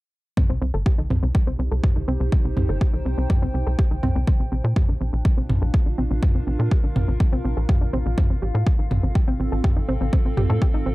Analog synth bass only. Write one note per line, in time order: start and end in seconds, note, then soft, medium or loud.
0.50 0.59 C2 medium
0.62 0.72 C2 medium
0.74 0.84 G1 medium
0.98 1.08 C2 medium
1.10 1.20 C2 medium
1.23 1.32 C2 medium
1.47 1.57 C2 medium
1.59 1.69 C2 loud
1.72 1.81 C2 medium
1.96 2.06 C2 medium
2.08 2.18 C2 medium
2.20 2.30 C2 medium
2.45 2.54 C2 medium
2.57 2.67 C2 loud
2.69 2.79 G1 medium
2.94 3.03 C2 medium
3.05 3.15 C2 loud
3.18 3.28 C2 medium
3.42 3.52 C2 medium
3.54 3.64 C2 medium
3.67 3.76 C2 medium
3.91 4.01 C2 medium
4.03 4.13 C2 medium
4.15 4.25 C2 medium
4.40 4.50 A#1 medium
4.52 4.62 A#1 medium
4.64 4.74 A#2 medium
4.89 4.98 A#1 medium
5.01 5.11 A#1 medium
5.13 5.23 A#1 medium
5.37 5.47 A#1 medium
5.49 5.59 A#1 loud
5.62 5.71 A#1 medium
5.86 5.96 A#1 medium
5.98 6.08 A#1 medium
6.11 6.20 A#1 medium
6.35 6.45 A#1 medium
6.47 6.57 A#1 loud
6.59 6.69 A#2 medium
6.84 6.93 A#1 medium
6.96 7.06 A#1 medium
7.08 7.18 A#1 medium
7.33 7.42 A#1 medium
7.45 7.55 A#1 loud
7.57 7.67 A#1 medium
7.81 7.91 A#1 medium
7.93 8.03 A#1 loud
8.06 8.15 A#1 medium
8.30 8.40 A1 medium
8.42 8.52 A1 medium
8.55 8.64 A2 medium
8.79 8.89 A1 medium
8.91 9.01 A1 loud
9.03 9.13 A1 medium
9.28 9.37 A1 medium
9.40 9.50 A1 loud
9.52 9.62 A1 medium
9.77 9.86 A1 medium
9.88 9.98 A1 medium
10.01 10.11 A1 medium
10.25 10.35 A1 medium
10.37 10.47 A1 loud
10.50 10.59 A2 medium
10.74 10.84 A1 medium
10.86 10.95 A1 loud